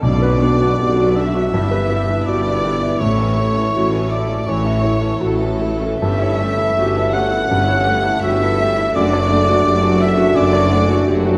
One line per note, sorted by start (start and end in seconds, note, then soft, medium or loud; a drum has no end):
0.02 1.49 B1 medium
0.02 0.71 B1 medium
0.02 0.71 B2 medium
0.02 0.21 D3 medium
0.02 0.21 B3 medium
0.02 2.97 B3 medium
0.02 1.50 F#4 medium
0.02 1.17 D5 medium
0.02 0.22 D5 medium
0.02 tam-tam medium
0.22 0.42 F#3 soft
0.22 0.42 D4 medium
0.22 0.53 B4 medium
0.22 0.43 B4 medium
0.41 0.61 D3 soft
0.41 0.61 B3 soft
0.41 0.72 D4 medium
0.41 0.61 D5 soft
0.60 0.79 F#3 medium
0.60 0.79 D4 medium
0.60 0.91 F#4 soft
0.60 0.81 B4 medium
0.78 1.45 B1 medium
0.78 1.45 B2 medium
0.78 0.96 D3 medium
0.78 0.96 B3 medium
0.78 0.98 G4 soft
0.78 0.97 D5 medium
0.97 1.16 F#3 medium
0.97 1.16 D4 soft
0.97 1.28 F#4 medium
0.97 1.17 B4 soft
1.16 1.35 D3 soft
1.16 1.35 B3 soft
1.16 1.46 D4 medium
1.16 1.35 D5 medium
1.16 2.28 E5 loud
1.16 2.28 E5 medium
1.34 1.53 F#3 soft
1.34 1.53 D4 soft
1.34 1.54 F#4 soft
1.34 1.54 B4 soft
1.52 2.19 G1 medium
1.52 2.18 G2 medium
1.52 2.97 G2 medium
1.52 1.70 G3 medium
1.52 1.70 E4 medium
1.52 6.01 E4 medium
1.52 1.70 G4 medium
1.71 1.90 E3 medium
1.71 1.90 G4 medium
1.71 2.01 B4 medium
1.71 1.90 B4 medium
1.90 2.09 G3 medium
1.90 2.19 B3 medium
1.90 2.08 E4 medium
1.90 2.09 G4 soft
2.08 2.27 E3 soft
2.08 2.38 E4 medium
2.08 2.27 G4 soft
2.08 2.27 B4 soft
2.26 2.93 G1 medium
2.26 2.93 G2 medium
2.26 2.44 G3 medium
2.26 2.44 E4 soft
2.26 2.45 F#4 medium
2.26 2.44 G4 medium
2.26 3.01 D5 medium
2.45 2.64 E3 medium
2.45 2.75 E4 soft
2.45 2.64 G4 soft
2.45 2.64 B4 medium
2.63 2.82 G3 soft
2.63 2.94 B3 soft
2.63 2.82 E4 medium
2.63 2.82 G4 medium
2.81 3.01 E3 soft
2.81 3.01 E4 medium
2.81 3.01 G4 medium
2.81 3.01 B4 medium
3.00 3.66 A1 medium
3.00 3.67 A1 medium
3.00 4.43 A2 medium
3.00 4.07 A2 medium
3.00 3.66 A2 medium
3.00 3.18 A3 medium
3.00 8.79 A3 medium
3.00 3.18 E4 medium
3.00 3.94 C#5 loud
3.00 4.08 C#5 medium
3.00 3.18 C#5 medium
3.18 3.38 E3 medium
3.18 3.38 C#4 medium
3.18 3.37 A4 medium
3.18 3.49 E5 medium
3.37 3.56 A3 medium
3.37 3.67 A3 medium
3.37 3.56 E4 medium
3.37 3.56 C#5 medium
3.56 3.75 E3 medium
3.56 3.74 C#4 medium
3.56 3.86 E4 medium
3.56 3.75 A4 soft
3.73 4.39 A1 medium
3.73 4.39 A2 medium
3.73 3.92 A3 medium
3.73 3.92 E4 medium
3.73 3.94 F#4 medium
3.73 3.91 C#5 soft
3.92 4.11 E3 medium
3.92 4.11 C#4 medium
3.92 4.22 E4 medium
3.92 4.11 A4 soft
4.10 4.29 A3 soft
4.10 4.41 A3 medium
4.10 4.29 E4 medium
4.10 4.29 C#5 medium
4.10 4.48 D5 medium
4.10 4.47 D5 medium
4.28 4.47 E3 soft
4.28 4.47 C#4 soft
4.28 4.58 E4 medium
4.28 4.47 A4 soft
4.46 5.11 A1 medium
4.46 5.12 A1 medium
4.46 5.11 A2 medium
4.46 4.77 E3 medium
4.46 4.64 A3 medium
4.46 4.64 E4 medium
4.46 4.63 C#5 medium
4.46 5.22 C#5 medium
4.46 5.20 C#5 medium
4.64 4.83 E3 medium
4.64 4.83 C#4 soft
4.64 4.83 A4 medium
4.64 4.94 E5 medium
4.82 5.01 A3 medium
4.82 5.13 A3 medium
4.82 5.01 E4 medium
4.82 5.01 C#5 medium
5.00 5.20 E3 soft
5.00 5.20 C#4 medium
5.00 5.32 E4 medium
5.00 5.20 A4 medium
5.20 5.92 A1 medium
5.20 5.91 A2 medium
5.20 5.38 A3 medium
5.20 5.38 E4 medium
5.20 5.40 F#4 medium
5.20 6.01 A4 medium
5.20 5.73 A4 medium
5.20 5.39 C#5 medium
5.38 5.60 E3 soft
5.38 5.60 C#4 medium
5.38 5.72 E4 soft
5.38 5.60 A4 medium
5.59 5.81 A3 medium
5.59 5.94 A3 medium
5.59 5.81 E4 medium
5.59 5.80 C#5 medium
5.81 6.01 E3 medium
5.81 6.01 C#4 medium
5.81 6.02 E4 medium
5.81 6.01 A4 medium
6.00 6.60 G1 medium
6.00 6.69 G1 medium
6.00 6.68 G2 medium
6.00 7.46 G2 medium
6.00 6.20 G3 medium
6.00 8.79 C#4 medium
6.00 6.20 C#4 medium
6.00 6.19 G4 medium
6.00 7.13 E5 medium
6.00 7.15 E5 loud
6.20 6.40 E3 medium
6.20 6.39 E4 medium
6.20 6.40 A4 medium
6.20 6.51 C#5 medium
6.39 6.58 G3 medium
6.39 6.70 A3 medium
6.39 6.58 C#4 medium
6.39 6.59 G4 medium
6.58 6.77 E3 medium
6.58 6.77 E4 medium
6.58 6.88 E4 medium
6.58 6.76 A4 medium
6.76 7.41 G1 medium
6.76 7.42 G1 medium
6.76 7.41 G2 medium
6.76 6.94 G3 medium
6.76 6.94 C#4 medium
6.76 6.96 F#4 medium
6.76 6.94 G4 medium
6.95 7.14 E3 medium
6.95 7.14 E4 medium
6.95 7.25 E4 medium
6.95 7.14 A4 medium
7.12 7.32 G3 medium
7.12 7.43 A3 medium
7.12 7.32 C#4 medium
7.12 7.31 G4 medium
7.12 8.20 F#5 medium
7.12 8.22 F#5 loud
7.30 7.50 E3 soft
7.30 7.50 E4 medium
7.30 7.61 E4 medium
7.30 7.49 A4 medium
7.49 8.14 G1 medium
7.49 8.15 G1 medium
7.49 8.14 G2 medium
7.49 8.92 G2 medium
7.49 7.67 G3 medium
7.49 7.67 C#4 medium
7.49 7.66 G4 medium
7.67 7.86 E3 medium
7.67 7.86 E4 medium
7.67 7.86 A4 medium
7.67 7.97 C#5 medium
7.85 8.04 G3 medium
7.85 8.15 A3 medium
7.85 8.04 C#4 medium
7.85 8.04 G4 medium
8.04 8.22 E3 medium
8.04 8.22 E4 medium
8.04 8.33 E4 medium
8.04 8.22 A4 medium
8.21 8.87 G1 medium
8.21 8.86 G2 medium
8.21 8.39 G3 medium
8.21 8.39 C#4 medium
8.21 8.41 F#4 medium
8.21 8.39 G4 medium
8.21 8.98 E5 loud
8.21 8.96 E5 medium
8.39 8.58 E3 medium
8.39 8.58 E4 medium
8.39 8.70 E4 medium
8.39 8.59 A4 medium
8.58 8.76 G3 medium
8.58 8.88 A3 medium
8.58 8.76 C#4 medium
8.58 8.78 G4 medium
8.75 8.94 E3 medium
8.75 8.94 E4 medium
8.75 8.95 E4 medium
8.75 8.96 A4 medium
8.94 9.57 F#1 medium
8.94 9.58 F#1 medium
8.94 9.57 F#2 medium
8.94 10.32 F#2 medium
8.94 9.11 A3 medium
8.94 11.38 A3 medium
8.94 9.11 D4 medium
8.94 11.38 D4 medium
8.94 9.12 F#4 medium
8.94 9.99 D5 loud
8.94 10.00 D5 loud
9.12 9.30 F#3 medium
9.12 9.30 F#4 medium
9.12 9.30 A4 medium
9.12 9.41 D5 medium
9.29 9.48 A3 medium
9.29 9.58 A3 medium
9.29 9.48 D4 medium
9.29 9.48 F#4 medium
9.47 9.65 F#3 medium
9.47 9.65 F#4 medium
9.47 9.76 F#4 medium
9.47 9.66 A4 medium
9.65 10.28 F#1 medium
9.65 10.28 F#2 medium
9.65 9.82 A3 medium
9.65 9.81 D4 medium
9.65 9.81 F#4 medium
9.65 9.83 G4 medium
9.83 10.00 F#3 medium
9.83 10.01 F#4 medium
9.83 10.11 F#4 medium
9.83 10.01 A4 medium
10.00 10.29 A3 medium
10.00 10.18 A3 medium
10.00 10.18 D4 medium
10.00 10.18 F#4 medium
10.00 10.37 E5 loud
10.00 10.37 E5 medium
10.17 10.36 F#3 medium
10.17 10.47 F#4 medium
10.17 10.37 F#4 medium
10.17 10.37 A4 medium
10.34 11.00 F#1 medium
10.34 11.38 F#2 medium
10.34 11.00 F#2 medium
10.34 10.53 A3 medium
10.34 10.54 D4 medium
10.34 10.53 F#4 medium
10.34 11.08 D5 loud
10.34 11.09 D5 loud
10.53 10.73 F#3 medium
10.53 10.73 F#4 medium
10.53 10.72 A4 medium
10.53 10.83 D5 medium
10.70 11.00 A3 medium
10.70 10.91 A3 medium
10.70 10.91 D4 medium
10.70 10.90 F#4 medium
10.88 11.09 F#3 medium
10.88 11.18 F#4 medium
10.88 11.09 F#4 medium
10.88 11.08 A4 medium
11.07 11.38 F#1 medium
11.07 11.38 F#2 medium
11.07 11.26 A3 medium
11.07 11.26 D4 medium
11.07 11.25 F#4 medium
11.07 11.26 G4 medium
11.25 11.38 F#3 medium
11.25 11.38 F#4 medium
11.25 11.38 A4 medium